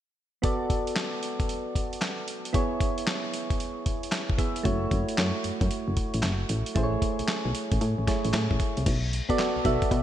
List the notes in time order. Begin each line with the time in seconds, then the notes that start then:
0.42 B3 F#4 A4 D5, kick, closed hi-hat
0.70 kick, closed hi-hat
0.87 closed hi-hat
0.96 snare, clap, closed hi-hat
1.23 closed hi-hat
1.40 kick, closed hi-hat
1.49 closed hi-hat
1.75 kick, closed hi-hat
1.93 closed hi-hat
2.02 snare, clap, closed hi-hat
2.28 closed hi-hat
2.45 closed hi-hat
2.53 B3 E4 G#4 C#5, kick, closed hi-hat
2.80 kick, closed hi-hat
2.98 closed hi-hat
3.07 snare, clap, closed hi-hat
3.34 closed hi-hat
3.50 kick, closed hi-hat
3.60 closed hi-hat
3.86 kick, closed hi-hat
4.03 closed hi-hat
4.12 snare, clap, closed hi-hat
4.30 kick
4.38 B3 E4 G#4 E5, kick, closed hi-hat
4.56 closed hi-hat
4.63 F#1 A3 E4 F#4 C#5, kick, closed hi-hat
4.91 F#1, kick, closed hi-hat
5.09 closed hi-hat
5.18 F#2, snare, clap, closed hi-hat
5.44 F#2, closed hi-hat
5.61 F#2, kick, closed hi-hat
5.71 closed hi-hat
5.88 F#1
5.97 kick, closed hi-hat
6.14 A1, closed hi-hat
6.23 F#1, snare, clap, closed hi-hat
6.49 A1, closed hi-hat
6.66 closed hi-hat
6.75 A1 A3 E4 G#4 C5, kick, closed hi-hat
6.83 C#5
7.02 kick, closed hi-hat
7.19 B1, closed hi-hat
7.28 snare, clap, closed hi-hat
7.45 B1
7.55 closed hi-hat
7.72 A1, kick, closed hi-hat
7.81 A2, closed hi-hat
7.98 A1
8.07 A3 E4 G#4 C#5, kick, snare, closed hi-hat
8.25 A1, closed hi-hat
8.34 A2, snare, clap, closed hi-hat
8.51 A1, kick
8.60 kick, closed hi-hat
8.77 C2, closed hi-hat
8.86 B1, kick, closed hi-hat, crash
9.13 closed hi-hat
9.29 B3 F#4 A4 D5, kick, closed hi-hat
9.39 snare, clap, closed hi-hat
9.56 B1
9.64 B1 B3 F#4 A4 E5, kick, closed hi-hat
9.82 kick, closed hi-hat
9.91 B2, kick, closed hi-hat